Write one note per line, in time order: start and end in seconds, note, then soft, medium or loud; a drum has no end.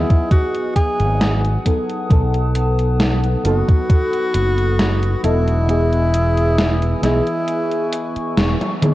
0.00 1.65 F#3 medium
0.00 1.66 B3 medium
0.00 1.66 D#4 medium
0.00 0.31 E4 loud
0.00 1.68 G#4 medium
0.00 5.65 B4 medium
0.00 1.61 D#5 medium
0.00 5.65 F#5 medium
0.00 1.62 G#5 medium
0.00 5.65 D#6 medium
0.10 kick loud
0.10 closed hi-hat soft
0.31 0.73 F#4 loud
0.31 kick loud
0.31 closed hi-hat medium
0.55 closed hi-hat soft
0.76 1.62 G#4 loud
0.76 kick medium
0.76 closed hi-hat medium
1.00 1.56 G#1 loud
1.00 closed hi-hat soft
1.21 snare loud
1.21 closed hi-hat medium
1.44 closed hi-hat soft
1.65 2.05 F#3 medium
1.65 2.05 B3 medium
1.65 2.06 D#4 medium
1.65 2.06 A4 medium
1.65 3.43 A5 medium
1.65 kick medium
1.65 closed hi-hat medium
1.89 closed hi-hat soft
2.09 3.35 B1 loud
2.09 3.39 F#3 medium
2.09 3.40 B3 medium
2.09 3.40 D#4 medium
2.09 3.41 A4 medium
2.09 kick loud
2.09 closed hi-hat medium
2.34 closed hi-hat soft
2.55 closed hi-hat medium
2.79 closed hi-hat soft
3.00 snare loud
3.00 closed hi-hat medium
3.24 closed hi-hat soft
3.43 3.61 F#1 loud
3.43 5.18 F#3 medium
3.43 5.19 B3 medium
3.43 5.19 D#4 medium
3.43 5.20 F#4 loud
3.43 5.20 A4 medium
3.43 5.67 B5 medium
3.43 closed hi-hat medium
3.68 kick loud
3.68 closed hi-hat soft
3.90 kick loud
3.90 closed hi-hat medium
4.13 closed hi-hat soft
4.34 5.14 F#1 medium
4.34 closed hi-hat medium
4.58 closed hi-hat soft
4.79 snare loud
4.79 closed hi-hat medium
5.03 closed hi-hat soft
5.23 6.93 E1 medium
5.23 5.63 F#3 medium
5.23 5.63 B3 medium
5.23 6.99 E4 loud
5.23 5.64 A4 medium
5.23 5.64 D#5 medium
5.23 closed hi-hat medium
5.48 closed hi-hat soft
5.67 6.97 E3 medium
5.67 6.98 B3 medium
5.67 6.99 G#4 medium
5.67 8.94 B4 medium
5.67 6.98 D#5 medium
5.67 8.94 G#5 medium
5.67 7.46 D#6 medium
5.67 closed hi-hat medium
5.92 closed hi-hat soft
6.14 closed hi-hat medium
6.37 closed hi-hat soft
6.58 snare loud
6.58 closed hi-hat medium
6.82 closed hi-hat soft
7.01 7.20 B1 loud
7.01 8.76 E3 medium
7.01 8.77 B3 medium
7.01 8.78 E4 loud
7.01 8.78 G#4 medium
7.01 8.77 D#5 medium
7.01 snare medium
7.01 closed hi-hat loud
7.27 closed hi-hat soft
7.48 8.94 C#6 medium
7.48 closed hi-hat medium
7.71 closed hi-hat soft
7.93 closed hi-hat medium
8.16 muted fingered electric bass stroke soft
8.16 closed hi-hat soft
8.37 8.54 E1 loud
8.37 snare loud
8.37 closed hi-hat medium
8.61 closed hi-hat soft
8.61 high tom medium
8.81 8.94 E3 medium
8.81 8.94 B3 medium
8.81 8.94 D#4 medium
8.81 8.94 G#4 medium
8.81 closed hi-hat loud
8.81 mid tom medium